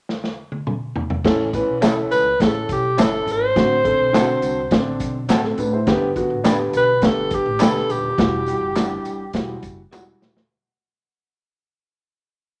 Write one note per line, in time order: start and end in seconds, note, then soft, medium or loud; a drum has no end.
0.09 snare medium
0.24 snare medium
0.52 high tom medium
0.67 mid tom medium
0.96 floor tom medium
1.10 floor tom medium
1.24 1.60 A1 medium
1.24 1.46 E3 loud
1.24 1.46 C#4 medium
1.24 1.46 A4 loud
1.24 kick medium
1.24 snare medium
1.24 crash medium
1.53 1.75 E3 medium
1.53 1.75 C#4 medium
1.53 1.75 B4 medium
1.53 kick medium
1.53 closed hi-hat medium
1.53 tambourine soft
1.67 2.04 B1 medium
1.81 2.25 E3 medium
1.81 1.92 C#4 medium
1.81 2.25 C#4 medium
1.81 1.93 E4 medium
1.81 2.25 A4 medium
1.81 1.93 A4 medium
1.81 snare loud
1.81 clap medium
1.81 closed hi-hat medium
1.81 tambourine medium
2.11 2.35 C#2 medium
2.11 2.42 B4 medium
2.11 closed hi-hat medium
2.11 tambourine medium
2.40 2.64 A1 medium
2.40 2.83 E3 medium
2.40 2.83 C#4 medium
2.40 2.47 G#4 medium
2.40 2.69 A4 medium
2.40 kick medium
2.40 snare loud
2.40 closed hi-hat medium
2.40 tambourine soft
2.47 2.86 A4 medium
2.69 2.93 B1 medium
2.69 3.02 G4 medium
2.69 kick medium
2.69 closed hi-hat medium
2.69 tambourine soft
2.98 3.22 G1 medium
2.98 3.41 E3 medium
2.98 3.08 C#4 medium
2.98 3.41 C#4 medium
2.98 3.09 E4 medium
2.98 3.09 A4 medium
2.98 3.41 A4 medium
2.98 3.33 A4 medium
2.98 snare loud
2.98 clap medium
2.98 closed hi-hat medium
2.98 tambourine medium
3.27 3.51 G#1 medium
3.27 closed hi-hat medium
3.27 tambourine soft
3.32 5.03 C5 loud
3.56 3.92 A1 medium
3.56 3.77 D3 medium
3.56 3.77 C4 medium
3.56 3.77 F#4 medium
3.56 kick medium
3.56 snare medium
3.56 closed hi-hat medium
3.84 4.06 D3 medium
3.84 4.06 C4 medium
3.84 4.06 A4 medium
3.84 kick medium
3.84 closed hi-hat medium
3.99 4.35 B1 medium
4.13 4.56 D3 medium
4.13 4.24 C4 medium
4.13 4.56 C4 medium
4.13 4.20 E4 medium
4.13 4.24 F#4 medium
4.13 4.25 A4 medium
4.13 snare loud
4.13 clap medium
4.13 closed hi-hat medium
4.13 tambourine medium
4.20 4.60 F#4 medium
4.42 4.67 C2 medium
4.42 closed hi-hat medium
4.42 tambourine medium
4.71 5.00 A1 medium
4.71 5.14 D3 medium
4.71 5.14 C4 medium
4.71 5.15 D4 medium
4.71 kick medium
4.71 snare loud
4.71 closed hi-hat medium
4.71 tambourine soft
5.00 5.24 B1 medium
5.00 kick medium
5.00 closed hi-hat medium
5.00 tambourine soft
5.28 5.53 A2 medium
5.28 5.39 C4 medium
5.28 5.40 F#4 medium
5.28 5.40 A4 medium
5.28 snare loud
5.28 clap medium
5.28 closed hi-hat medium
5.28 tambourine medium
5.44 5.58 C4 soft
5.44 5.58 A4 medium
5.44 snare soft
5.58 5.82 A2 medium
5.58 5.73 D4 medium
5.58 5.72 B4 medium
5.58 closed hi-hat medium
5.58 tambourine medium
5.73 6.01 E4 medium
5.73 6.00 C5 medium
5.87 6.23 G1 medium
5.87 6.09 D3 loud
5.87 6.09 B3 medium
5.87 6.09 G4 loud
5.87 kick loud
5.87 snare medium
5.87 closed hi-hat medium
6.16 6.38 D3 medium
6.16 6.38 B3 medium
6.16 6.38 F#4 medium
6.16 kick medium
6.16 closed hi-hat medium
6.30 6.67 A1 medium
6.44 6.88 D3 medium
6.44 6.88 B3 medium
6.44 6.55 D4 medium
6.44 6.55 G4 medium
6.44 6.88 G4 medium
6.44 6.56 B4 medium
6.44 snare loud
6.44 clap medium
6.44 closed hi-hat medium
6.44 tambourine medium
6.73 6.98 B1 medium
6.73 7.07 B4 loud
6.73 closed hi-hat medium
6.73 tambourine medium
7.02 7.39 G1 medium
7.02 7.46 D3 medium
7.02 7.47 B3 medium
7.02 7.47 G4 medium
7.02 7.36 A4 medium
7.02 kick medium
7.02 snare loud
7.02 closed hi-hat medium
7.02 tambourine medium
7.31 kick medium
7.31 closed hi-hat medium
7.31 tambourine soft
7.35 7.65 G4 medium
7.46 7.58 A1 medium
7.60 7.84 E1 medium
7.60 8.04 D3 medium
7.60 8.04 B3 medium
7.60 7.71 D4 medium
7.60 7.71 G4 medium
7.60 8.04 G4 medium
7.60 7.93 A4 medium
7.60 7.71 B4 medium
7.60 snare loud
7.60 clap medium
7.60 closed hi-hat medium
7.60 tambourine medium
7.76 snare soft
7.89 8.13 D#1 medium
7.89 9.65 G4 medium
7.89 closed hi-hat medium
7.89 tambourine soft
8.18 8.55 E1 medium
8.18 8.40 E3 medium
8.18 8.40 G3 medium
8.18 8.40 F#4 medium
8.18 kick medium
8.18 snare loud
8.18 closed hi-hat medium
8.18 tambourine soft
8.46 8.69 E3 medium
8.46 8.69 G3 medium
8.46 8.69 F#4 medium
8.46 closed hi-hat medium
8.46 tambourine soft
8.61 8.98 F#1 medium
8.76 9.20 E3 medium
8.76 8.87 G3 medium
8.76 9.20 G3 medium
8.76 8.87 B3 medium
8.76 9.20 D4 medium
8.76 8.88 F#4 medium
8.76 snare loud
8.76 clap loud
8.76 closed hi-hat medium
8.76 tambourine medium
9.05 9.30 G1 medium
9.05 closed hi-hat medium
9.05 tambourine medium
9.33 9.58 E1 medium
9.33 9.78 E3 medium
9.33 9.78 G3 medium
9.33 9.78 F#4 medium
9.33 kick medium
9.33 snare loud
9.33 closed hi-hat medium
9.33 tambourine soft
9.63 9.87 F#1 medium
9.63 kick medium
9.63 closed hi-hat medium
9.63 tambourine soft
9.91 10.17 E1 medium
9.91 10.35 E3 medium
9.91 10.03 G3 medium
9.91 10.36 G3 medium
9.91 10.03 B3 medium
9.91 9.99 F4 medium
9.91 10.03 F#4 medium
9.91 snare medium
9.91 clap medium
9.91 tambourine medium
9.99 10.39 F#4 medium
10.21 10.46 D#1 medium
10.21 snare medium
10.21 tambourine soft
10.37 snare medium